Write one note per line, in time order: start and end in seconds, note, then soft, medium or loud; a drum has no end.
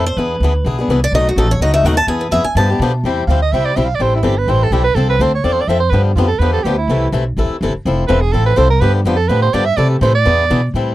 0.00 0.16 F2 medium
0.06 0.18 C5 loud
0.17 0.40 E2 medium
0.17 0.35 E3 medium
0.17 0.35 B3 medium
0.17 0.35 D4 medium
0.17 0.35 G#4 medium
0.17 0.65 B4 medium
0.40 0.64 D2 medium
0.40 0.52 E3 medium
0.40 0.52 B3 medium
0.40 0.52 D4 medium
0.44 0.52 G#4 medium
0.65 0.87 B1 medium
0.65 0.78 E3 medium
0.65 0.78 B3 medium
0.65 0.78 D4 medium
0.65 0.77 G#4 medium
0.79 0.89 B3 soft
0.79 0.89 D4 medium
0.79 0.89 G#4 medium
0.88 1.11 C2 medium
0.88 0.99 E3 medium
0.88 0.99 B3 medium
0.88 0.99 D4 medium
0.88 1.00 G#4 loud
1.04 1.13 D5 loud
1.12 1.35 B1 medium
1.12 1.31 B2 medium
1.12 1.31 F#3 medium
1.12 1.31 A3 medium
1.12 1.31 D#4 medium
1.12 1.26 D#5 loud
1.16 1.32 F#4 medium
1.29 1.38 F#4 medium
1.36 1.59 A1 loud
1.36 1.47 B2 medium
1.36 1.47 F#3 medium
1.36 1.47 A3 medium
1.36 1.47 D#4 medium
1.36 1.48 F#4 loud
1.36 1.50 A4 medium
1.51 1.61 C#5 loud
1.59 1.83 C#2 medium
1.59 1.73 B2 medium
1.59 1.74 F#3 medium
1.59 1.74 A3 medium
1.59 1.74 D#4 medium
1.59 1.72 F#4 medium
1.59 1.73 D#5 medium
1.74 1.84 A3 medium
1.74 1.85 D#4 medium
1.74 1.84 F#4 medium
1.74 1.86 E5 loud
1.83 2.06 D#2 medium
1.83 1.94 B2 medium
1.83 1.95 F#3 medium
1.83 1.95 A3 loud
1.83 1.95 D#4 loud
1.83 1.95 F#4 loud
1.83 1.97 F#5 medium
1.97 2.08 A5 loud
2.07 2.31 E2 medium
2.07 2.26 E3 medium
2.07 2.26 B3 medium
2.07 2.26 E4 medium
2.07 2.26 G#4 medium
2.07 2.21 G#5 medium
2.21 2.32 B4 medium
2.31 2.43 F2 loud
2.31 2.42 E3 medium
2.31 2.42 B3 medium
2.31 2.42 E4 medium
2.31 2.43 G#4 loud
2.31 2.45 E5 medium
2.44 2.56 G#5 medium
2.44 muted upright bass stroke soft
2.55 2.79 G2 medium
2.55 2.69 D3 medium
2.55 2.70 F3 medium
2.55 2.70 B3 medium
2.55 2.70 D4 medium
2.55 2.68 G4 medium
2.55 2.79 A5 medium
2.69 2.81 B3 medium
2.69 2.81 D4 medium
2.69 2.80 G4 medium
2.79 3.03 B2 loud
2.79 2.91 D3 medium
2.79 2.91 F3 medium
2.79 2.91 B3 loud
2.79 2.91 D4 loud
2.79 2.91 G4 loud
3.04 3.27 E2 medium
3.04 3.22 C3 medium
3.04 3.22 G3 medium
3.04 3.23 C4 medium
3.04 3.23 E4 medium
3.04 3.23 G4 medium
3.27 3.51 D2 medium
3.27 3.38 C3 medium
3.27 3.39 G3 medium
3.27 3.39 C4 medium
3.27 3.39 E4 medium
3.27 3.40 G4 medium
3.27 3.40 F5 medium
3.42 3.54 D#5 medium
3.52 3.76 C2 medium
3.52 3.71 C3 medium
3.52 3.71 G3 medium
3.52 3.71 C4 medium
3.52 3.71 E4 medium
3.52 3.71 G4 medium
3.52 3.67 E5 medium
3.65 3.78 D5 medium
3.76 3.99 B1 medium
3.76 3.86 C3 medium
3.76 3.86 G3 medium
3.76 3.87 C4 medium
3.76 3.87 E4 medium
3.76 3.87 G4 medium
3.76 3.87 E5 medium
3.86 3.97 F5 loud
3.95 4.04 D5 medium
3.99 4.23 A1 medium
3.99 4.18 E3 medium
3.99 4.18 G3 medium
3.99 4.18 C4 medium
3.99 4.18 E4 medium
3.99 4.18 A4 medium
3.99 4.15 C5 medium
4.16 4.27 E4 medium
4.23 4.46 G1 loud
4.23 4.34 E3 medium
4.23 4.34 G3 medium
4.23 4.34 C4 medium
4.23 4.34 E4 medium
4.23 4.40 G4 medium
4.23 4.34 A4 medium
4.38 4.52 B4 medium
4.47 4.70 A1 medium
4.47 4.66 E3 medium
4.47 4.66 G3 medium
4.47 4.66 C4 medium
4.47 4.66 E4 medium
4.47 4.67 A4 medium
4.47 4.65 C5 medium
4.63 4.74 A4 medium
4.71 4.94 B1 medium
4.71 4.82 E3 medium
4.71 4.82 G3 medium
4.71 4.83 C4 medium
4.71 4.83 E4 medium
4.71 4.83 G4 medium
4.71 4.83 A4 medium
4.84 4.96 B4 loud
4.95 5.19 C2 medium
4.95 5.14 F3 medium
4.95 5.14 C4 medium
4.95 5.15 D4 medium
4.95 5.09 A4 medium
4.95 5.15 A4 medium
5.10 5.24 B4 medium
5.19 5.43 D2 loud
5.19 5.30 F3 medium
5.19 5.31 C4 loud
5.19 5.31 D4 medium
5.19 5.31 A4 loud
5.19 5.34 C5 medium
5.35 5.47 C#5 medium
5.44 5.67 E2 medium
5.44 5.62 F3 medium
5.44 5.62 C4 medium
5.44 5.63 D4 medium
5.44 5.62 A4 medium
5.44 5.55 D5 medium
5.53 5.63 C5 medium
5.61 5.70 D5 medium
5.67 5.91 F2 medium
5.67 5.79 F3 medium
5.67 5.79 C4 medium
5.67 5.79 D4 medium
5.67 5.79 A4 medium
5.67 5.79 E5 medium
5.80 5.91 C5 loud
5.90 6.15 G2 medium
5.90 6.11 D3 medium
5.90 6.11 F3 medium
5.90 6.11 B3 medium
5.90 6.11 D4 medium
5.90 6.11 G4 medium
5.90 6.03 B4 medium
6.04 6.17 D4 soft
6.15 6.39 F2 loud
6.15 6.27 D3 medium
6.15 6.27 F3 medium
6.15 6.27 B3 medium
6.15 6.28 D4 medium
6.15 6.27 F4 medium
6.15 6.28 G4 loud
6.28 6.40 A4 medium
6.39 6.63 E2 medium
6.39 6.59 D3 medium
6.39 6.59 F3 medium
6.39 6.59 B3 medium
6.39 6.59 D4 medium
6.39 6.59 G4 medium
6.39 6.52 B4 medium
6.53 6.65 A4 medium
6.63 6.87 D2 medium
6.63 6.75 D3 medium
6.63 6.75 F3 medium
6.63 6.75 B3 medium
6.63 6.76 D4 medium
6.63 6.77 G4 medium
6.63 6.76 G4 medium
6.78 7.11 E4 medium
6.88 7.12 C2 medium
6.88 7.07 C3 medium
6.88 7.07 E3 medium
6.88 7.07 A3 medium
6.88 7.07 E4 medium
6.88 7.07 A4 medium
7.12 7.36 B1 medium
7.12 7.23 C3 medium
7.12 7.23 E3 medium
7.12 7.23 A3 medium
7.12 7.23 E4 medium
7.12 7.24 A4 medium
7.37 7.49 A1 medium
7.37 7.55 C3 medium
7.37 7.55 E3 medium
7.37 7.56 A3 medium
7.37 7.56 E4 medium
7.37 7.56 A4 medium
7.50 muted upright bass stroke soft
7.61 7.73 G1 medium
7.61 7.72 C3 medium
7.61 7.72 E3 medium
7.61 7.72 A3 medium
7.61 7.72 E4 medium
7.61 7.72 A4 medium
7.75 muted upright bass stroke soft
7.85 8.09 F1 medium
7.85 8.03 F3 medium
7.85 8.03 C4 medium
7.85 8.04 E4 medium
7.85 8.04 A4 medium
8.08 8.33 E1 loud
8.08 8.19 F3 medium
8.08 8.19 C4 loud
8.08 8.19 E4 loud
8.08 8.20 A4 loud
8.08 8.23 B4 medium
8.21 8.34 G#4 medium
8.33 8.57 A1 medium
8.33 8.51 F3 medium
8.33 8.51 C4 medium
8.33 8.51 E4 medium
8.33 8.45 A4 medium
8.33 8.52 A4 medium
8.46 8.59 B4 medium
8.56 8.80 C2 medium
8.56 8.67 F3 medium
8.56 8.67 C4 medium
8.56 8.67 E4 loud
8.56 8.67 A4 loud
8.56 8.70 C5 loud
8.70 8.82 A#4 loud
8.81 9.04 G2 medium
8.81 8.99 D3 medium
8.81 8.99 F3 medium
8.81 8.99 B3 medium
8.81 8.99 D4 medium
8.81 8.99 G4 medium
8.81 8.94 B4 loud
8.94 9.08 D4 soft
9.05 9.28 F2 medium
9.05 9.15 D3 medium
9.05 9.16 F3 medium
9.05 9.16 B3 loud
9.05 9.16 D4 loud
9.05 9.16 F4 medium
9.05 9.16 G4 loud
9.16 9.30 A4 loud
9.28 9.52 A2 medium
9.28 9.47 D3 medium
9.28 9.47 F3 medium
9.28 9.47 B3 medium
9.28 9.47 D4 medium
9.28 9.48 G4 medium
9.28 9.42 B4 medium
9.42 9.56 C5 loud
9.53 9.77 G2 medium
9.53 9.63 D3 medium
9.53 9.64 F3 loud
9.53 9.64 B3 medium
9.53 9.64 D4 medium
9.53 9.64 G4 loud
9.53 9.67 D5 medium
9.65 9.78 E5 loud
9.77 9.95 C3 medium
9.77 10.00 C3 medium
9.77 9.95 E3 medium
9.77 9.95 A3 medium
9.77 9.96 E4 medium
9.77 9.96 A4 medium
9.77 9.89 D5 medium
9.90 10.04 G4 medium
10.01 10.25 A2 loud
10.01 10.11 C3 medium
10.01 10.12 E3 loud
10.01 10.12 A3 medium
10.01 10.12 E4 loud
10.01 10.12 A4 loud
10.01 10.15 C5 medium
10.15 10.70 D5 loud
10.25 10.49 E2 medium
10.25 10.43 E3 medium
10.25 10.43 B3 medium
10.25 10.44 D4 medium
10.25 10.44 G#4 medium
10.50 10.73 B2 loud
10.50 10.60 E3 medium
10.50 10.60 B3 medium
10.50 10.60 D4 loud
10.50 10.60 G#4 loud
10.74 10.95 A2 medium
10.74 10.92 E3 medium
10.74 10.92 G3 medium
10.74 10.93 C4 medium
10.74 10.93 E4 medium
10.74 10.93 A4 medium